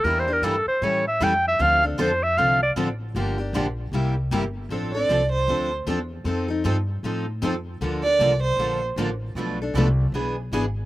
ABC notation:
X:1
M:4/4
L:1/16
Q:"Swing" 1/4=155
K:Dm
V:1 name="Clarinet"
(3B2 c2 B2 A2 c2 ^c2 e2 g2 e2 | f2 A2 c2 e2 f2 d2 z4 | z16 | [K:F] z16 |
z16 | z16 | z16 |]
V:2 name="Violin"
z16 | z16 | z16 | [K:F] z2 d4 c4 z6 |
z16 | z2 d4 c4 z6 | z16 |]
V:3 name="Steel-string acoustic guitar"
[E,B,DG]2 [B,DG]2 [E,B,DG] z3 [E,G,^CEA]2 z2 [E,G,CEA] z3 | [D,F,CDA]2 [CDA]2 [D,F,CDA] z3 [D,F,CDA]2 z2 [D,F,CDA] z3 | [D,F,B,DG]2 [B,DG]2 [D,F,B,DG] z3 [C,G,B,EG]2 z2 [C,G,B,EG] z3 | [K:F] [F,CDA]2 [CDA]2 [F,CDA] z3 [F,CDA]2 z2 [F,CDA] z3 |
[F,C_EA]2 [CEA]2 [F,CEA] z3 [F,CEA]2 z2 [F,CEA] z3 | [D,F,B,DA]2 [B,DA]2 [D,F,B,DA] z3 [D,F,B,DA]2 z2 [D,F,B,DA] z3 | [=B,,F,A,DA]2 [A,DA]2 [B,,F,A,DA] z3 [E,=B,D^G]2 z2 [E,B,DG] z3 |]
V:4 name="Steel-string acoustic guitar"
[E,G,DEB]2 z2 [E,G,DEB] z3 [E,G,^CEA]2 z2 [E,G,CEA] z3 | [D,F,CDA]2 z2 [D,F,CDA] z3 [D,F,CDA]2 z2 [D,F,CDA] z3 | [D,F,B,DG]2 z2 [D,F,B,DG] z3 [C,G,B,EG]2 z2 [C,G,B,EG] z3 | [K:F] [F,CDA]2 z2 [F,CDA] z3 [F,CDA]2 z2 [F,CDA] z3 |
[F,C_EA]2 z2 [F,CEA] z3 [F,CEA]2 z2 [F,CEA] z3 | [D,F,B,DA]2 z2 [D,F,B,DA] z3 [D,F,B,DA]2 z2 [D,F,B,DA] z3 | [=B,,F,A,DA=B]2 z2 [B,,F,A,DAB] z3 [E,=B,D^GB]2 z2 [E,B,DGB] z3 |]
V:5 name="Upright bass" clef=bass
E,,4 G,,2 z2 A,,4 F,,4 | D,,4 F,,4 C,,4 A,,,4 | G,,,4 B,,,4 C,,4 G,,,4 | [K:F] A,,,4 C,,4 D,,4 E,,4 |
F,,4 G,,4 A,,4 F,,4 | D,,4 C,,4 B,,,4 A,,,4 | =B,,,4 C,,4 B,,,4 ^G,,,4 |]